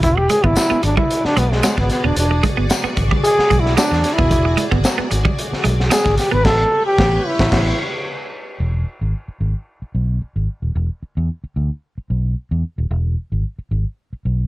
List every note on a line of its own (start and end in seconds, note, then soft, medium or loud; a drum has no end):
0.03 0.27 E1 loud
0.03 0.19 E4 loud
0.03 6.41 F#4 medium
0.03 6.42 G#4 medium
0.03 6.41 D5 medium
0.03 kick loud
0.03 closed hi-hat medium
0.17 0.32 G4 loud
0.17 muted clean electric guitar stroke soft
0.29 0.38 G#3 medium
0.29 0.46 G#4 loud
0.29 closed hi-hat medium
0.44 0.55 G#1 medium
0.44 0.51 B3 medium
0.44 0.83 E4 loud
0.44 kick medium
0.56 snare loud
0.56 closed hi-hat medium
0.56 tambourine loud
0.70 0.78 B3 medium
0.70 muted fingered electric bass stroke medium
0.83 0.96 G#1 medium
0.83 0.97 D4 medium
0.83 muted clean electric guitar stroke soft
0.83 closed hi-hat medium
0.97 1.05 G3 medium
0.97 1.27 E4 medium
0.97 kick medium
1.11 closed hi-hat loud
1.25 1.40 D4 medium
1.25 muted fingered electric bass stroke soft
1.25 snare soft
1.37 1.60 B1 medium
1.37 1.45 G#3 medium
1.37 1.54 B3 medium
1.37 closed hi-hat medium
1.52 1.78 G#3 medium
1.52 snare soft
1.63 1.72 G#3 loud
1.63 muted fingered electric bass stroke soft
1.63 snare loud
1.63 closed hi-hat loud
1.63 tambourine loud
1.77 1.89 G#1 medium
1.77 1.90 B3 medium
1.77 muted clean electric guitar stroke soft
1.77 kick medium
1.77 snare soft
1.90 2.07 B3 medium
1.90 snare soft
1.90 closed hi-hat medium
2.04 2.15 D#1 medium
2.04 2.12 B3 medium
2.04 2.18 D4 medium
2.16 2.40 E1 medium
2.16 2.43 D4 medium
2.16 closed hi-hat loud
2.31 muted clean electric guitar stroke medium
2.43 2.52 G#3 medium
2.43 kick loud
2.43 closed hi-hat medium
2.57 2.69 G1 medium
2.57 2.65 B3 medium
2.70 snare loud
2.70 closed hi-hat medium
2.70 tambourine loud
2.84 2.92 B3 medium
2.84 muted fingered electric bass stroke medium
2.97 3.10 G#1 loud
2.97 muted clean electric guitar stroke soft
2.97 kick loud
2.97 closed hi-hat medium
3.11 3.19 G3 medium
3.11 kick loud
3.24 3.61 G#4 loud
3.24 closed hi-hat loud
3.39 muted fingered electric bass stroke soft
3.39 snare soft
3.50 3.74 B1 medium
3.50 3.59 G#3 medium
3.50 kick medium
3.50 closed hi-hat medium
3.60 3.77 E4 medium
3.66 snare soft
3.77 3.85 G#3 medium
3.77 4.15 D4 loud
3.77 snare loud
3.77 closed hi-hat medium
3.77 tambourine loud
3.91 4.03 E2 medium
3.91 muted clean electric guitar stroke soft
3.91 snare soft
4.04 snare soft
4.04 closed hi-hat medium
4.13 4.67 E4 medium
4.18 4.31 D#1 medium
4.18 4.26 B3 medium
4.18 kick loud
4.31 4.55 E1 loud
4.31 kick loud
4.31 closed hi-hat loud
4.45 muted clean electric guitar stroke soft
4.57 4.66 G#3 medium
4.57 closed hi-hat medium
4.71 4.83 G#1 medium
4.71 4.79 B3 medium
4.71 kick loud
4.84 snare loud
4.84 closed hi-hat medium
4.84 tambourine loud
4.98 5.06 B3 medium
4.98 muted fingered electric bass stroke soft
5.11 5.24 G#1 medium
5.11 muted clean electric guitar stroke soft
5.11 closed hi-hat medium
5.25 5.32 G3 medium
5.25 kick loud
5.39 closed hi-hat loud
5.53 muted fingered electric bass stroke soft
5.53 snare soft
5.64 5.89 B1 loud
5.64 5.72 G#3 medium
5.64 closed hi-hat medium
5.80 snare soft
5.90 5.99 G#3 loud
5.90 6.17 G#4 medium
5.90 muted fingered electric bass stroke medium
5.90 snare loud
5.90 closed hi-hat loud
5.90 tambourine loud
6.05 6.17 G#1 medium
6.05 muted clean electric guitar stroke soft
6.05 kick loud
6.05 snare soft
6.18 6.34 G4 loud
6.18 snare soft
6.18 closed hi-hat medium
6.31 6.44 G#1 medium
6.31 6.39 B3 medium
6.31 6.46 B4 loud
6.45 6.64 A1 medium
6.45 8.58 G4 medium
6.45 6.86 A4 loud
6.45 8.58 B4 medium
6.45 8.58 C#5 medium
6.45 kick loud
6.45 snare loud
6.45 crash medium
6.86 7.28 G4 loud
6.98 7.17 A1 loud
6.98 kick loud
6.98 snare loud
7.27 7.80 E4 medium
7.39 7.50 A1 medium
7.39 kick loud
7.39 snare loud
7.52 7.71 A1 loud
7.52 kick loud
7.52 snare loud
7.52 crash medium
8.60 8.83 E1 medium
9.01 9.12 G#1 medium
9.28 muted fingered electric bass stroke soft
9.41 9.53 G#1 medium
9.82 muted fingered electric bass stroke soft
9.95 10.18 B1 medium
10.22 muted fingered electric bass stroke soft
10.36 10.47 G#1 medium
10.62 10.74 D#1 medium
10.75 10.88 E1 medium
11.03 muted fingered electric bass stroke soft
11.17 11.28 E2 medium
11.44 muted fingered electric bass stroke soft
11.56 11.69 D2 medium
11.98 muted fingered electric bass stroke soft
12.10 12.34 B1 medium
12.51 12.62 E2 medium
12.78 12.89 D#1 medium
12.91 13.14 E1 loud
13.32 13.43 G#1 medium
13.59 muted fingered electric bass stroke soft
13.71 13.84 G#1 medium
14.13 muted fingered electric bass stroke soft
14.25 14.47 B1 medium